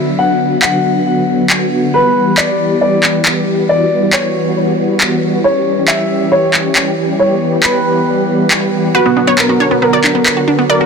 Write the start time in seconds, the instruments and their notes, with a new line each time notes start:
Already playing: supersaw synth D3 F#3 B3 F#4
0.19 supersaw synth D3 F#3 B3 F#4, grand piano F#5
0.40 supersaw synth D3 F#3 B3 F#4
0.62 supersaw synth D3 F#3 B3 F#4, grand piano F#5, clap
0.84 supersaw synth D3 F#3 B3 F#4
1.06 supersaw synth D3 F#3 B3 F#4
1.28 supersaw synth D3 F#3 B3 F#4
1.50 supersaw synth D3 F#3 B3 F#4, clap
1.72 supersaw synth D3 F#3 B3 F#4
1.94 supersaw synth E3 G3 B3 G4, grand piano B4
2.16 supersaw synth E3 G3 B3 G4
2.37 supersaw synth E3 G3 B3 G4, grand piano D5, clap
2.60 supersaw synth E3 G3 B3 G4
2.81 supersaw synth E3 G3 B3 G4, grand piano D5
3.03 supersaw synth E3 G3 B3 G4, clap
3.25 supersaw synth E3 G3 B3 G4, clap
3.47 supersaw synth E3 G3 B3 G4
3.69 supersaw synth E3 G3 B3 F#4, grand piano D5
3.91 supersaw synth E3 G3 B3 F#4
4.13 supersaw synth E3 G3 B3 F#4, grand piano C#5, clap
4.35 supersaw synth E3 G3 B3 F#4
4.57 supersaw synth E3 G3 B3 F#4
4.78 supersaw synth E3 G3 B3 F#4
5.01 supersaw synth E3 G3 B3 F#4, clap
5.22 supersaw synth E3 G3 B3 F#4
5.44 supersaw synth E3 G3 C#4 G4, grand piano C#5
5.66 supersaw synth E3 G3 C#4 G4
5.88 supersaw synth E3 G3 C#4 G4, grand piano E5, clap
6.10 supersaw synth E3 G3 C#4 G4
6.31 supersaw synth E3 G3 C#4 G4, grand piano C#5
6.54 supersaw synth E3 G3 C#4 G4, clap
6.76 supersaw synth E3 G3 C#4 G4, clap
6.98 supersaw synth E3 G3 C#4 G4
7.19 supersaw synth E3 G3 B3 G4, grand piano C#5
7.41 supersaw synth E3 G3 B3 G4
7.63 supersaw synth E3 G3 B3 G4, grand piano B4, clap
7.85 supersaw synth E3 G3 B3 G4
8.07 supersaw synth E3 G3 B3 G4
8.29 supersaw synth E3 G3 B3 G4
8.51 supersaw synth E3 G3 B3 G4, clap
8.72 supersaw synth E3 G3 B3 G4
8.95 supersaw synth D3 F#3 B3 F#4, grand piano F#4, synth arpeggio sound B4, synth pluck B4
9.06 synth pluck B3, synth arpeggio sound F#4
9.16 supersaw synth D3 F#3 B3 F#4, synth pluck B3, synth arpeggio sound D4
9.27 synth arpeggio sound B3, synth pluck C#5
9.38 supersaw synth D3 F#3 B3 F#4, synth pluck B3, grand piano A#4, synth arpeggio sound B4, clap
9.49 synth pluck B3, synth arpeggio sound F#4
9.60 supersaw synth D3 F#3 B3 F#4, synth arpeggio sound D4, synth pluck C#5
9.71 synth arpeggio sound B3, synth pluck B3
9.82 supersaw synth D3 F#3 B3 F#4, synth pluck B3, grand piano A#4, synth arpeggio sound B4
9.93 synth arpeggio sound F#4, synth pluck D5
10.04 supersaw synth D3 F#3 B3 F#4, synth arpeggio sound D4, clap
10.15 synth arpeggio sound B3
10.26 supersaw synth D3 F#3 B3 F#4, synth arpeggio sound B4, clap
10.37 synth arpeggio sound F#4
10.48 supersaw synth D3 F#3 B3 F#4, synth arpeggio sound D4
10.59 synth arpeggio sound B3
10.69 supersaw synth D3 F#3 B3 F#4, grand piano A#4, synth arpeggio sound B4, synth pluck D5
10.81 synth arpeggio sound F#4, synth pluck F#4